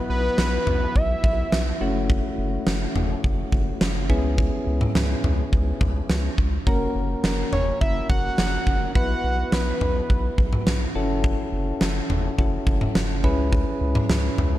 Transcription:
Already playing: synth keys F#3 B3 E4 F#4, downlifter
0.10 analog synth bass B1, analog synth lead B4
0.38 analog synth bass B1, snare
0.67 analog synth bass B1, mid tom
0.95 analog synth bass B1, analog synth lead E5, kick
1.24 analog synth bass B1, kick
1.52 analog synth bass B1, snare
1.81 analog synth bass F#1, synth keys A3 C#4 E4 F#4
2.10 kick
2.38 analog synth bass F#1
2.67 analog synth bass F#1, snare
2.95 analog synth bass F#1, mid tom
3.24 analog synth bass F#1, kick
3.52 analog synth bass F#1, kick
3.81 analog synth bass F#1, snare
4.10 analog synth bass C#2, synth keys B3 C#4 E4 G#4, kick
4.38 kick
4.67 analog synth bass C#2
4.81 mid tom
4.95 analog synth bass C#2, snare
5.24 analog synth bass C#2, mid tom
5.53 analog synth bass C#2, kick
5.81 analog synth bass C#2, kick, mid tom
6.10 analog synth bass C#2, snare
6.38 analog synth bass C#2, kick
6.67 analog synth bass F#1, synth keys A#3 C#4 F#4 A#4, kick
6.95 analog synth bass F#1
7.24 analog synth bass F#1, snare
7.52 analog synth bass F#1, analog synth lead C#5, mid tom
7.81 analog synth bass F#1, analog synth lead E5, kick
8.10 analog synth bass F#1, analog synth lead F#5, kick
8.38 analog synth bass F#1, snare
8.67 analog synth bass F#1, kick
8.95 analog synth bass B1, synth keys B3 E4 F#4 B4, analog synth lead F#5, kick
9.24 analog synth bass B1
9.52 analog synth bass B1, analog synth lead B4, snare
9.81 analog synth bass B1, mid tom
10.10 analog synth bass B1, kick
10.38 analog synth bass B1, kick
10.53 mid tom
10.67 analog synth bass B1, snare
10.95 analog synth bass F#1, synth keys C#4 E4 F#4 A4
11.24 kick
11.53 analog synth bass F#1
11.81 analog synth bass F#1, snare
12.10 analog synth bass F#1, mid tom
12.38 analog synth bass F#1, synth keys C#4 E4 F#4 A4, kick
12.67 analog synth bass F#1, kick
12.81 mid tom
12.95 analog synth bass F#1, snare
13.24 analog synth bass C#2, synth keys C#4 E4 G#4 B4, kick
13.53 kick
13.81 analog synth bass C#2
13.95 mid tom
14.09 analog synth bass C#2, snare
14.38 analog synth bass C#2, mid tom

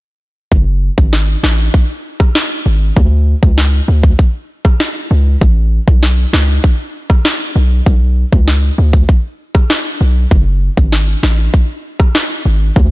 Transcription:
0.52 808-style bass F#1, kick
0.98 808-style bass G#1, kick
1.13 snare
1.43 808-style bass A1, finger snap, snare
1.74 kick
2.20 kick, cross-stick
2.35 finger snap, snare
2.66 808-style bass G#1
2.97 808-style bass D2, kick
3.43 808-style bass C#2, kick
3.58 snare
3.88 808-style bass D2
4.03 kick
4.19 kick
4.65 kick, cross-stick
4.80 finger snap, snare
5.11 808-style bass C#2
5.41 808-style bass A1, kick
5.88 808-style bass B1, kick
6.03 snare
6.33 808-style bass C#2, finger snap, snare
6.64 kick
7.10 kick, cross-stick
7.25 finger snap, snare
7.56 808-style bass B1
7.86 808-style bass B1, kick
8.32 808-style bass C#2, kick
8.48 snare
8.78 808-style bass D2
8.93 kick
9.09 kick
9.55 kick, cross-stick
9.70 finger snap, snare
10.01 808-style bass B1
10.31 808-style bass F#1, kick
10.77 808-style bass G#1, kick
10.92 snare
11.23 808-style bass A1, finger snap, snare
11.54 kick
12.00 kick, cross-stick
12.15 finger snap, snare
12.46 808-style bass G#1
12.76 808-style bass D2, kick

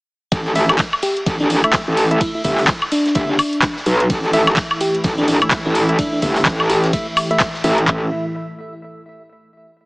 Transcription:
0.32 wobble bass A1, kick, closed hi-hat, ride
0.46 closed hi-hat
0.55 synth stab A3 E4 E5, closed hi-hat, open hi-hat
0.69 snare, closed hi-hat, high woodblock
0.79 kick, snare, clap, closed hi-hat, ride
0.93 high woodblock
1.02 fm electric piano G4, closed hi-hat, open hi-hat
1.17 closed hi-hat
1.26 wobble bass A1, kick, closed hi-hat, ride
1.40 wobble bass A1, fm electric piano D4, closed hi-hat
1.50 fm electric piano D4, closed hi-hat, open hi-hat
1.64 synth stab A3 E4 E5, closed hi-hat, high woodblock
1.73 kick, snare, clap, closed hi-hat, ride
1.88 wobble bass A1
1.97 closed hi-hat, open hi-hat
2.11 synth stab A3 E4 E5, closed hi-hat
2.21 fm electric piano E4, kick, closed hi-hat, ride
2.35 fm electric piano E4
2.44 wobble bass G1, synth stab A3 E4 E5, kick, closed hi-hat, open hi-hat
2.58 snare, clap, open hi-hat
2.67 kick, snare, clap, closed hi-hat, ride
2.82 high woodblock
2.92 fm electric piano D4, closed hi-hat, open hi-hat
3.06 snare, closed hi-hat
3.15 wobble bass G1, synth stab A3 E4 E5, kick, closed hi-hat, ride
3.29 fm electric piano D4
3.39 open hi-hat, high woodblock
3.53 closed hi-hat
3.62 kick, snare, clap, closed hi-hat, ride
3.77 snare
3.86 wobble bass B1, closed hi-hat, open hi-hat
4.00 closed hi-hat
4.10 wobble bass A1, analog synth pad A2 E3 E4, kick, closed hi-hat, ride
4.24 closed hi-hat
4.33 synth stab A3 E4 E5, closed hi-hat, open hi-hat
4.47 snare, closed hi-hat, high woodblock
4.56 kick, snare, clap, closed hi-hat, ride
4.71 high woodblock
4.81 fm electric piano G4, closed hi-hat, open hi-hat
4.95 closed hi-hat
5.04 wobble bass A1, kick, closed hi-hat, ride
5.18 wobble bass A1, fm electric piano D4, closed hi-hat
5.28 fm electric piano D4, closed hi-hat, open hi-hat
5.42 synth stab A3 E4 E5, closed hi-hat, high woodblock
5.51 kick, snare, clap, closed hi-hat, ride
5.65 wobble bass A1, fm electric piano E4
5.75 closed hi-hat, open hi-hat
5.89 synth stab A3 E4 E5, closed hi-hat
5.99 fm electric piano D4, kick, closed hi-hat, ride
6.13 fm electric piano D4
6.22 wobble bass G1, synth stab A3 E4 E5, kick, closed hi-hat, open hi-hat
6.36 snare, clap, open hi-hat
6.45 wobble bass A1, kick, snare, clap, closed hi-hat, ride
6.60 high woodblock
6.70 fm electric piano G4, closed hi-hat, open hi-hat
6.84 fm electric piano G4, snare, closed hi-hat
6.93 synth stab A3 E4 E5, kick, closed hi-hat, ride
7.17 open hi-hat, high woodblock
7.31 synth stab A3 E4 E5, closed hi-hat
7.40 kick, snare, clap, closed hi-hat, ride
7.54 snare
7.64 wobble bass A1, synth stab A3 E4 E5, closed hi-hat, open hi-hat
7.78 closed hi-hat
7.88 wobble bass A1, analog synth pad A2 E3 E4, synth stab A3 E4 E5, kick, clap

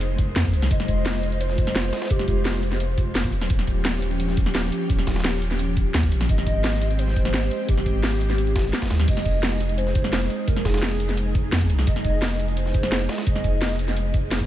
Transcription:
Already playing: sub bass F1, analog synth pad G#3 D#4 C5
0.01 closed hi-hat
0.19 kick, closed hi-hat
0.36 sub bass F2, snare, closed hi-hat
0.45 kick, closed hi-hat
0.53 sub bass C2, closed hi-hat
0.62 snare
0.71 sub bass F1, analog synth pad F4, soft synth lead D#5, kick, closed hi-hat
0.80 snare
0.88 kick, closed hi-hat
1.06 snare, closed hi-hat
1.15 snare
1.23 closed hi-hat
1.32 closed hi-hat
1.41 soft synth lead C5, closed hi-hat
1.50 snare
1.58 kick, closed hi-hat
1.67 snare
1.75 snare, closed hi-hat
1.84 closed hi-hat
1.93 snare, closed hi-hat
2.02 snare, closed hi-hat
2.10 sub bass F1, soft synth lead G4, kick, closed hi-hat
2.19 snare
2.28 soft synth lead G4, kick, closed hi-hat
2.45 snare, closed hi-hat
2.54 snare
2.63 closed hi-hat
2.72 snare, closed hi-hat
2.80 closed hi-hat
2.98 kick, closed hi-hat
3.15 snare, closed hi-hat
3.24 sub bass A#1, kick, closed hi-hat
3.32 sub bass D#1, analog synth pad F3 C#4 G4, closed hi-hat
3.41 snare
3.50 sub bass D#1, kick, closed hi-hat
3.59 snare
3.67 kick, closed hi-hat
3.85 snare, closed hi-hat
3.94 snare
4.02 closed hi-hat
4.11 closed hi-hat
4.20 closed hi-hat
4.29 snare
4.37 kick, closed hi-hat
4.46 snare
4.55 snare, closed hi-hat
4.64 closed hi-hat
4.72 closed hi-hat
4.90 sub bass D#1, kick, closed hi-hat
4.99 snare
5.07 kick, snare, closed hi-hat
5.16 snare, closed hi-hat
5.20 snare, closed hi-hat
5.24 snare, closed hi-hat
5.33 snare
5.42 closed hi-hat
5.51 snare, closed hi-hat
5.59 closed hi-hat
5.77 kick, closed hi-hat
5.94 sub bass D#2, snare, closed hi-hat
6.03 kick, closed hi-hat
6.12 sub bass A#1, closed hi-hat
6.21 snare
6.29 sub bass G#1, analog synth pad G#3 C4 G4, soft synth lead D#5, kick, closed hi-hat
6.38 snare
6.47 kick, closed hi-hat
6.64 snare, closed hi-hat
6.73 snare
6.82 closed hi-hat
6.90 closed hi-hat
6.99 soft synth lead C5, closed hi-hat
7.08 snare
7.16 kick, closed hi-hat
7.25 snare
7.34 snare, closed hi-hat
7.43 closed hi-hat
7.51 closed hi-hat
7.68 sub bass G#1, soft synth lead G4, kick, closed hi-hat
7.77 snare
7.86 kick, closed hi-hat
8.03 snare, closed hi-hat
8.12 snare
8.21 closed hi-hat
8.30 snare, closed hi-hat
8.38 closed hi-hat
8.47 closed hi-hat
8.56 kick, snare, closed hi-hat
8.65 snare
8.73 snare, closed hi-hat
8.82 kick, snare, closed hi-hat
8.90 sub bass D#2, snare, closed hi-hat
8.99 snare
9.08 sub bass F1, analog synth pad D#4 G#4, soft synth lead D#5, kick, closed hi-hat, crash
9.17 snare
9.25 kick, closed hi-hat
9.43 snare, closed hi-hat
9.52 snare
9.60 closed hi-hat
9.69 closed hi-hat
9.78 soft synth lead C5, closed hi-hat
9.87 snare
9.95 kick, closed hi-hat
10.04 snare
10.13 snare, closed hi-hat
10.22 closed hi-hat
10.30 closed hi-hat
10.47 sub bass F1, soft synth lead A#4, kick, closed hi-hat
10.56 snare
10.65 soft synth lead G#4, kick, snare, closed hi-hat
10.74 snare, closed hi-hat
10.78 snare, closed hi-hat
10.82 snare, closed hi-hat
10.91 snare
11.00 closed hi-hat
11.09 snare, closed hi-hat
11.17 closed hi-hat
11.35 kick, closed hi-hat
11.52 sub bass F2, snare, closed hi-hat
11.61 kick, closed hi-hat
11.70 sub bass C2, closed hi-hat
11.79 snare
11.87 sub bass F1, soft synth lead D#5, kick, closed hi-hat
11.96 snare
12.05 kick, closed hi-hat
12.22 snare, closed hi-hat
12.31 snare
12.39 closed hi-hat
12.48 closed hi-hat
12.57 soft synth lead C5, closed hi-hat
12.66 snare
12.74 kick, closed hi-hat
12.83 snare
12.92 snare, closed hi-hat
13.01 closed hi-hat
13.09 soft synth lead D#5, snare, closed hi-hat
13.18 snare, closed hi-hat
13.27 sub bass F1, kick, closed hi-hat
13.36 snare
13.44 kick, closed hi-hat
13.62 snare, closed hi-hat
13.71 snare
13.79 closed hi-hat
13.88 snare, closed hi-hat
13.97 closed hi-hat
14.14 kick, closed hi-hat
14.31 snare, closed hi-hat
14.40 sub bass A#1, kick, closed hi-hat

